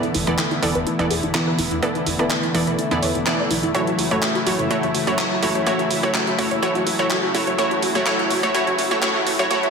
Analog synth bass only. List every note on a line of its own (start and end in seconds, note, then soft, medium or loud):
0.15 0.25 E1 loud
0.27 0.36 E1 medium
0.62 0.73 E1 medium
0.75 0.84 E1 medium
0.99 1.08 E1 medium
1.10 1.21 E1 loud
1.23 1.32 E1 medium
1.58 1.69 E1 medium
1.71 1.80 E2 medium
2.06 2.17 E1 medium
2.19 2.28 E1 medium
2.55 2.65 E1 medium
2.67 2.76 E1 medium
2.91 3.00 E1 medium
3.03 3.13 E2 medium
3.15 3.24 E1 medium
3.51 3.65 B1 medium
3.63 3.72 E1 medium
3.99 4.09 F#1 loud
4.11 4.20 F#1 medium
4.47 4.57 F#1 loud
4.59 4.68 F#1 medium
4.83 4.92 F#1 medium
4.95 5.05 F#1 medium
5.07 5.16 F#1 medium
5.42 5.53 F#1 medium
5.55 5.64 F#2 medium
5.91 6.01 F#1 loud
6.03 6.12 F#1 medium
6.38 6.49 F#1 loud
6.51 6.60 F#1 medium
6.75 6.84 F#1 medium
6.87 6.97 F#1 medium
6.99 7.08 F#1 medium
7.35 7.45 F#1 medium
7.47 7.56 F#2 medium
7.83 7.93 F#1 medium
7.95 8.04 F#1 medium
8.31 8.41 F#1 medium
8.43 8.52 F#1 medium
8.67 8.76 F#1 medium
8.79 8.89 F#1 loud
8.91 9.00 F#1 medium
9.27 9.37 F#1 loud
9.39 9.48 F#2 medium